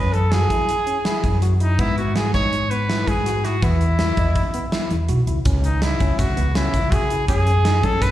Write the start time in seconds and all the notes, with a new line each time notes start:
Already playing: F#2 C#4 B4
0.13 A4, closed hi-hat
0.32 F#4 G#4, snare, closed hi-hat
0.50 F#2 E4, kick, closed hi-hat
0.69 closed hi-hat
0.87 C#4, closed hi-hat
1.05 E4, snare, closed hi-hat
1.24 F#2, kick, closed hi-hat
1.42 F#4, closed hi-hat
1.60 D#4 E4, closed hi-hat
1.79 G#2 B3 E4, kick, closed hi-hat
1.98 F#4, closed hi-hat
2.16 E4 G#4, snare, closed hi-hat
2.34 G#2 D#4 C#5, kick, closed hi-hat
2.53 closed hi-hat
2.70 B3 B4, closed hi-hat
2.89 E4, snare, closed hi-hat
3.07 G#2 G#4, kick, closed hi-hat
3.26 F#4, snare, closed hi-hat
3.44 E4 F#4, snare, closed hi-hat
3.62 E2 B3 E4, kick, closed hi-hat
3.81 closed hi-hat
3.99 E4, snare, closed hi-hat
4.17 E2 D#5, kick, closed hi-hat
4.35 kick, closed hi-hat
4.54 B3, closed hi-hat
4.72 E4, snare, closed hi-hat
4.90 E2, closed hi-hat
5.09 B1 F#4, closed hi-hat
5.27 C#2 E4, closed hi-hat
5.45 C#2 C#4, kick, closed hi-hat, shaker
5.64 D#4, closed hi-hat, shaker
5.82 D#4 E4, snare, closed hi-hat
6.00 C#2 C#4, kick, closed hi-hat
6.19 C#2 F#4, kick, closed hi-hat, shaker
6.37 C#2 B3, closed hi-hat
6.55 C#4 E4, snare, closed hi-hat
6.74 C#2, kick, closed hi-hat, shaker
6.92 C#3 F#4 G#4, kick, closed hi-hat
7.10 E4, closed hi-hat
7.28 F#2 C#4 G#4, kick, closed hi-hat, shaker
7.47 closed hi-hat, shaker
7.65 D#4, snare, closed hi-hat
7.83 F#3 C#4 A4, kick, closed hi-hat
8.02 F#2 B4, kick, closed hi-hat, shaker